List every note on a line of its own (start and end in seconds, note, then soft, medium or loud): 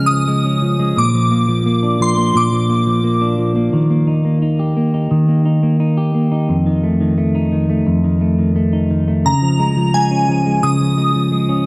0.00 0.96 C#3 medium
0.00 0.10 F3 medium
0.00 0.26 G#3 medium
0.00 0.44 C#4 medium
0.06 1.00 D#6 medium
0.11 0.62 F3 soft
0.28 0.78 G#3 medium
0.45 1.04 C#4 medium
0.62 1.14 F3 medium
0.79 1.04 G#3 medium
0.97 2.33 A#2 medium
0.97 2.04 D6 medium
1.14 1.48 F3 soft
1.31 1.65 A#3 soft
1.49 2.00 F3 medium
1.66 2.17 A#3 medium
1.83 3.20 D4 medium
2.00 2.52 F3 medium
2.00 2.37 C6 medium
2.18 2.69 A#3 medium
2.35 3.73 A#2 medium
2.35 3.35 D6 medium
2.52 2.86 F3 soft
2.69 3.03 A#3 medium
2.86 3.38 F3 medium
3.04 3.55 A#3 medium
3.21 3.80 D4 medium
3.38 4.10 F3 soft
3.56 3.90 A#3 medium
3.73 5.10 D#3 medium
3.90 4.24 A#3 soft
4.07 4.42 D#4 medium
4.25 4.75 A#3 medium
4.42 4.94 D#4 medium
4.59 5.96 G4 medium
4.77 5.27 A#3 medium
4.94 5.45 D#4 soft
5.11 6.66 D#3 medium
5.28 5.62 A#3 soft
5.45 5.80 D#4 medium
5.63 6.13 A#3 medium
5.80 6.31 D#4 medium
5.97 6.56 G4 medium
6.15 6.56 A#3 soft
6.32 6.87 D#4 medium
6.49 7.85 F2 medium
6.66 6.99 D#3 soft
6.83 7.17 A3 medium
7.00 7.51 D#3 medium
7.18 7.68 A3 medium
7.35 8.72 D#4 medium
7.52 8.03 D#3 medium
7.70 8.20 A3 medium
7.87 9.31 F2 medium
8.04 8.37 D#3 medium
8.21 8.55 A3 medium
8.39 8.89 D#3 soft
8.56 9.07 A3 medium
8.73 9.31 D#4 medium
8.90 9.32 D#3 medium
9.08 9.32 A3 medium
9.25 10.62 C#3 medium
9.25 9.96 A#5 medium
9.42 9.76 F3 medium
9.59 9.93 G#3 medium
9.76 10.28 F3 medium
9.94 10.45 G#3 medium
9.94 10.65 G#5 medium
10.11 11.48 C#4 medium
10.29 10.80 F3 medium
10.46 10.96 G#3 medium
10.63 11.66 C#3 medium
10.63 11.66 D#6 medium
10.80 11.14 F3 soft
10.97 11.31 G#3 medium
11.15 11.66 F3 medium
11.32 11.66 G#3 medium
11.49 11.66 C#4 medium